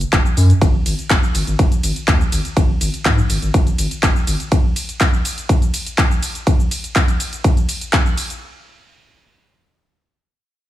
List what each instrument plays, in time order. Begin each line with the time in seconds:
0.01 closed hi-hat, shaker
0.13 analog synth bass F#1, kick, clap, closed hi-hat, shaker
0.26 shaker
0.37 analog synth bass F#2, open hi-hat, shaker
0.50 closed hi-hat, shaker
0.61 analog synth bass G#1, kick, closed hi-hat, ride, shaker
0.86 analog synth bass G#1, open hi-hat, ride, shaker
0.99 closed hi-hat, shaker
1.10 analog synth bass G#1, kick, clap, closed hi-hat, ride, shaker
1.23 shaker
1.35 analog synth bass G#1, open hi-hat, ride, shaker
1.47 analog synth bass G#1, closed hi-hat, shaker
1.59 analog synth bass G#1, kick, closed hi-hat, ride, shaker
1.72 closed hi-hat, shaker
1.83 analog synth bass G#1, open hi-hat, ride, shaker
1.96 closed hi-hat, shaker
2.08 analog synth bass D#2, kick, clap, closed hi-hat, ride, shaker
2.21 shaker
2.32 analog synth bass G#1, open hi-hat, ride, shaker
2.45 closed hi-hat, shaker
2.57 analog synth bass G#1, kick, closed hi-hat, ride, shaker
2.81 analog synth bass G#1, open hi-hat, ride, shaker
2.94 closed hi-hat, shaker
3.05 analog synth bass G#2, kick, clap, closed hi-hat, ride, shaker
3.18 shaker
3.30 analog synth bass G#1, open hi-hat, ride, shaker
3.42 analog synth bass G#1, closed hi-hat, shaker
3.54 analog synth bass G#1, kick, closed hi-hat, ride, shaker
3.67 closed hi-hat, shaker
3.78 analog synth bass G#1, open hi-hat, ride, shaker
3.91 closed hi-hat, shaker
4.03 analog synth bass G#1, kick, clap, closed hi-hat, ride, shaker
4.16 shaker
4.27 analog synth bass G#1, open hi-hat, ride, shaker
4.40 closed hi-hat, shaker
4.52 kick, closed hi-hat, ride, shaker
4.76 open hi-hat, ride, shaker
4.89 closed hi-hat, shaker
5.00 kick, clap, closed hi-hat, ride, shaker
5.14 shaker
5.25 open hi-hat, ride, shaker
5.38 closed hi-hat, shaker
5.49 kick, closed hi-hat, ride, shaker
5.62 closed hi-hat, shaker
5.74 open hi-hat, ride, shaker
5.86 closed hi-hat, shaker
5.98 kick, clap, closed hi-hat, ride, shaker
6.11 shaker
6.23 open hi-hat, ride, shaker
6.35 closed hi-hat, shaker
6.47 kick, closed hi-hat, ride, shaker
6.60 shaker
6.71 open hi-hat, ride, shaker
6.84 closed hi-hat, shaker
6.96 kick, clap, closed hi-hat, ride, shaker
7.08 closed hi-hat, shaker
7.20 open hi-hat, ride, shaker
7.33 closed hi-hat, shaker
7.44 kick, closed hi-hat, ride, shaker
7.57 closed hi-hat, shaker
7.69 open hi-hat, ride, shaker
7.81 closed hi-hat, shaker
7.93 kick, clap, closed hi-hat, ride, shaker
8.06 shaker
8.18 open hi-hat, ride, shaker
8.30 closed hi-hat, shaker